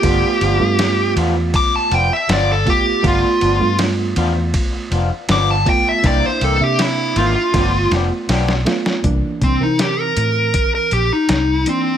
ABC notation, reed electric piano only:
X:1
M:4/4
L:1/16
Q:1/4=80
K:Gdor
V:1 name="Reed electric piano"
[A,=B,F]3 [A,B,F]6- [A,B,F] z4 [A,B,F]2 | [A,=B,F]3 [A,B,F]6- [A,B,F] z4 [A,B,F]2 | [B,DE]3 [B,De]4- [B,De] [A,=B,F]6 [A,B,F]2 | [E,B,D]3 [E,CB]6- [E,CB] z4 [E,B,D]2 |]